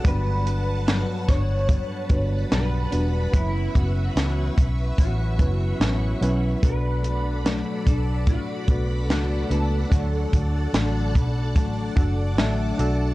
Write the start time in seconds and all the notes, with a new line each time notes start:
Already playing: F#5 A5
0.03 G1 G2 F#3 G3 B3 D4 F#4 B4, kick, closed hi-hat
0.07 B3 D4 B4
0.46 F#3 B3 D4, closed hi-hat
0.87 G2 F#3 B3 D4, snare, closed hi-hat
1.28 G1 F#3 B3 D4 C#5, kick, snare, closed hi-hat
1.68 G2 F#3 B3 D4, kick, closed hi-hat
2.09 G1 F#3 G3 B3 D4 F#4 B4, kick, closed hi-hat
2.51 B1 G2 F#3 B3 D4 B4, snare, closed hi-hat
2.91 E1 F#3 G3 B3 D4 F#4 B4, closed hi-hat
3.32 F#1 F#2 E3 F#3 B3 C#4 E4 B4 E5 C#6, kick, closed hi-hat
3.73 F#1 E3 B3 C#4 F#4, kick, closed hi-hat
4.16 C#2 F#2 E3 B3 C#4, snare, closed hi-hat
4.56 B1 E3 B3 C#4, kick, closed hi-hat
4.98 A1 F#2 E3 B3 C#4 F#4, kick, closed hi-hat
5.38 F#1 E3 F#3 B3 C#4 E4 B4, kick, closed hi-hat
5.80 A1 F#2 E3 B3 C#4, snare, closed hi-hat
6.21 B1 E3 F#3 B3 C#4 E4 B4, closed hi-hat
6.62 B1 B2 F#3 A3 B3 D4 F#4 A4 B4 D5 F#5 B5, kick, closed hi-hat
7.04 F#3 A3 D4, closed hi-hat
7.45 B2 F#3 A3 D4, snare, closed hi-hat
7.51 A4
7.86 B1 F#3 A3 D4 A4, kick, closed hi-hat
8.27 B2 F#3 A3 D4 F#4, kick, closed hi-hat
8.68 B1 F#3 A3 B3 D4 F#4 B4, kick, closed hi-hat
9.09 C#2 B2 F#3 A3 D4 F#4, snare, closed hi-hat
9.49 C#2 F#3 A3 B3 D4 F#4 A4 B4, closed hi-hat
9.90 D2 D3 F#3 A3 D4 F#4 A4 D5 A5, kick, closed hi-hat
9.94 D4
10.32 D2 F#3 A3 D4, kick, closed hi-hat
10.73 A1 D3 F#3 A3 D4, snare, closed hi-hat
11.15 B1 D4 B5, kick, closed hi-hat
11.55 A1 D3 F#3 A3 D4 A5, kick, closed hi-hat
11.96 F#1 F#3 A3 D4 F#4 A4 F#5, kick, closed hi-hat
12.37 A1 D3 F#3 A3 D4 E5, snare, closed hi-hat
12.78 B1 F#3 A3 D4 F#4 A4 D5, closed hi-hat